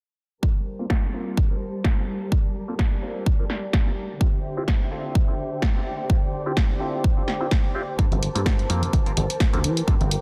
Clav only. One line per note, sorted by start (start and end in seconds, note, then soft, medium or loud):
0.42 0.49 A#3 medium
0.42 0.50 C4 medium
0.42 0.50 F4 medium
0.42 0.50 A4 medium
0.79 0.85 A#3 medium
0.79 0.85 C4 medium
0.79 0.85 F4 medium
0.79 0.85 A4 medium
1.13 1.47 A#3 medium
1.13 1.47 C4 medium
1.13 1.47 F4 medium
1.13 1.48 A#4 medium
1.50 1.56 A#3 medium
1.50 1.56 C4 medium
1.50 1.56 F4 medium
1.50 1.56 A#4 medium
1.97 2.03 A#3 medium
1.97 2.03 C4 medium
1.97 2.03 F4 medium
1.97 2.03 A4 medium
2.32 2.38 A#3 medium
2.32 2.39 C4 medium
2.32 2.39 F4 medium
2.32 2.39 A4 loud
2.68 2.74 A#3 medium
2.68 2.74 C4 medium
2.68 2.74 F4 medium
2.68 2.74 A4 medium
3.02 3.36 A#3 medium
3.02 3.36 C4 medium
3.02 3.36 F4 medium
3.02 3.36 A#4 loud
3.39 3.45 A#3 medium
3.39 3.45 C4 medium
3.39 3.45 F4 medium
3.39 3.45 A#4 medium
3.86 3.92 A#3 medium
3.86 3.92 C4 medium
3.86 3.92 F4 medium
3.86 3.92 A4 medium
4.21 4.27 C4 medium
4.21 4.28 E4 medium
4.21 4.28 F4 medium
4.21 4.28 G4 loud
4.57 4.63 C4 medium
4.57 4.63 E4 medium
4.57 4.63 F4 medium
4.57 4.63 G4 medium
4.91 5.25 C4 medium
4.91 5.25 E4 medium
4.91 5.25 F4 medium
4.91 5.25 A4 loud
5.28 5.34 C4 medium
5.28 5.34 E4 medium
5.28 5.34 F4 medium
5.28 5.34 A4 medium
5.75 5.81 C4 medium
5.75 5.81 E4 medium
5.75 5.81 F4 medium
5.75 5.81 G4 medium
6.09 6.16 C4 medium
6.09 6.17 E4 medium
6.09 6.17 F4 medium
6.09 6.17 G4 loud
6.46 6.52 C4 medium
6.46 6.52 E4 medium
6.46 6.52 F4 medium
6.46 6.52 G4 medium
6.80 7.14 C4 medium
6.80 7.14 E4 medium
6.80 7.14 F4 medium
6.80 7.14 A4 medium
7.17 7.23 C4 medium
7.17 7.23 E4 medium
7.17 7.23 F4 medium
7.17 7.23 A4 medium
7.41 7.46 C4 medium
7.41 7.46 E4 medium
7.41 7.47 F4 medium
7.41 7.47 C5 loud
7.75 7.82 C4 medium
7.75 7.82 E4 medium
7.75 7.82 F4 medium
7.75 7.82 G4 loud
7.98 8.05 A#3 medium
7.98 8.06 C4 medium
7.98 8.06 F4 medium
7.98 8.06 A4 loud
8.35 8.41 A#3 medium
8.35 8.41 C4 medium
8.35 8.41 F4 medium
8.35 8.41 A4 medium
8.70 9.03 A#3 medium
8.70 9.03 C4 medium
8.70 9.03 F4 medium
8.70 9.03 A#4 medium
9.06 9.12 A#3 medium
9.06 9.12 C4 medium
9.06 9.12 F4 medium
9.06 9.12 A#4 medium
9.53 9.59 A#3 medium
9.53 9.59 C4 medium
9.53 9.59 F4 medium
9.53 9.59 A4 medium
9.87 9.94 A#3 medium
9.87 9.94 C4 medium
9.87 9.95 F4 medium
9.87 9.95 A4 loud